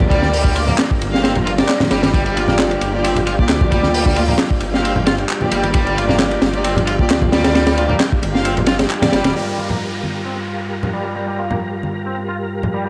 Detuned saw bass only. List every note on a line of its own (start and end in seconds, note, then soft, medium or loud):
0.00 0.73 D2 medium
1.00 1.63 G1 loud
1.91 2.76 G1 medium
2.81 3.44 G1 loud
3.49 4.34 D2 medium
4.62 5.24 G1 medium
5.52 6.37 G1 medium
6.42 7.05 G1 loud
7.10 7.95 D2 medium
8.23 8.85 G1 loud
9.13 9.21 G1 medium
9.25 9.32 D1 medium